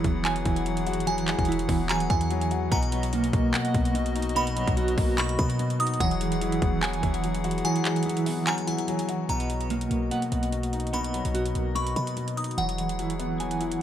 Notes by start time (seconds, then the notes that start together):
Already playing: E3 F#3 G#3 E4 G#4 F#5
0.04 E1 B3, kick, closed hi-hat
0.25 F#3 G#5, clap, closed hi-hat
0.36 closed hi-hat
0.45 E1 E4, kick, closed hi-hat
0.56 closed hi-hat
0.66 F#3, closed hi-hat
0.77 closed hi-hat
0.87 F#4, closed hi-hat
0.93 closed hi-hat
1.00 closed hi-hat
1.07 E3 F#3 G#5, closed hi-hat
1.18 closed hi-hat
1.28 G#3, clap, closed hi-hat
1.39 E1, kick, closed hi-hat
1.45 F#3 E4, closed hi-hat
1.52 closed hi-hat
1.59 closed hi-hat
1.69 E1 B3, kick, open hi-hat
1.89 F#3 G#5 A#5, clap, closed hi-hat
2.00 closed hi-hat
2.10 E2 E4 G#5, kick, closed hi-hat
2.21 closed hi-hat
2.30 F#3, closed hi-hat
2.41 closed hi-hat
2.51 F#4, closed hi-hat
2.71 B1 B2 B3 F#4 D#5 A#5, kick, closed hi-hat
2.83 closed hi-hat
2.92 F#3, closed hi-hat
3.03 closed hi-hat
3.13 B2 A#3, closed hi-hat
3.24 closed hi-hat
3.33 B1 A#3, kick, closed hi-hat
3.54 B2 F#5, clap, closed hi-hat
3.65 closed hi-hat
3.74 B1 B3, kick, closed hi-hat
3.85 closed hi-hat
3.94 B2, closed hi-hat
4.06 closed hi-hat
4.15 D#4, closed hi-hat
4.22 closed hi-hat
4.29 closed hi-hat
4.35 B2 B3 B5, closed hi-hat
4.47 closed hi-hat
4.56 F#3, closed hi-hat
4.67 B1, kick, closed hi-hat
4.76 B2 F#4, closed hi-hat
4.88 closed hi-hat
4.97 B1 A#3, kick, open hi-hat
5.18 B2 B5 C#6, clap, closed hi-hat
5.29 closed hi-hat
5.39 B2 B3 B5, kick, closed hi-hat
5.50 closed hi-hat
5.59 B2, closed hi-hat
5.70 closed hi-hat
5.79 D#4 D#6, closed hi-hat
5.87 closed hi-hat
5.94 closed hi-hat
6.00 E1 E3 F#3 E4 G#4 F#5, kick, closed hi-hat
6.11 closed hi-hat
6.21 G#3, closed hi-hat
6.32 closed hi-hat
6.41 F#3 E4, closed hi-hat
6.52 closed hi-hat
6.62 E1 B3, kick, closed hi-hat
6.82 F#3 G#5, clap, closed hi-hat
6.93 closed hi-hat
7.03 E1 E4, kick, closed hi-hat
7.14 closed hi-hat
7.24 F#3, closed hi-hat
7.35 closed hi-hat
7.44 F#4, closed hi-hat
7.51 closed hi-hat
7.58 closed hi-hat
7.64 E3 F#3 G#5, closed hi-hat
7.76 closed hi-hat
7.85 G#3, clap, closed hi-hat
7.96 closed hi-hat
8.03 F#3 E4, closed hi-hat
8.09 closed hi-hat
8.17 closed hi-hat
8.26 B3, open hi-hat
8.47 F#3 G#5 A#5, clap, closed hi-hat
8.58 closed hi-hat
8.67 E4 G#5, closed hi-hat
8.78 closed hi-hat
8.88 F#3, closed hi-hat
8.99 closed hi-hat
9.09 F#4, closed hi-hat
9.29 B1 B2 B3 F#4 D#5 A#5, closed hi-hat
9.40 closed hi-hat
9.50 F#3, closed hi-hat
9.61 closed hi-hat
9.70 B2 A#3, closed hi-hat
9.81 closed hi-hat
9.91 B1 A#3, closed hi-hat
10.11 B2 F#5, closed hi-hat
10.22 closed hi-hat
10.32 B1 B3, closed hi-hat
10.43 closed hi-hat
10.52 B2, closed hi-hat
10.63 closed hi-hat
10.73 D#4, closed hi-hat
10.80 closed hi-hat
10.87 closed hi-hat
10.93 B2 B3 B5, closed hi-hat
11.04 closed hi-hat
11.13 F#3, closed hi-hat
11.25 B1, closed hi-hat
11.34 B2 F#4, closed hi-hat
11.46 closed hi-hat
11.55 B1 A#3, closed hi-hat
11.75 B2 B5 C#6, closed hi-hat
11.87 closed hi-hat
11.96 B2 B3 B5, closed hi-hat
12.07 closed hi-hat
12.17 B2, closed hi-hat
12.28 closed hi-hat
12.37 D#4 D#6, closed hi-hat
12.44 closed hi-hat
12.51 closed hi-hat
12.57 E1 E3 F#3 E4 G#4 F#5, closed hi-hat
12.69 closed hi-hat
12.78 G#3, closed hi-hat
12.89 closed hi-hat
12.99 F#3 E4, closed hi-hat
13.10 closed hi-hat
13.19 B3, closed hi-hat
13.40 F#3 G#5, closed hi-hat
13.51 closed hi-hat
13.61 E4, closed hi-hat
13.72 closed hi-hat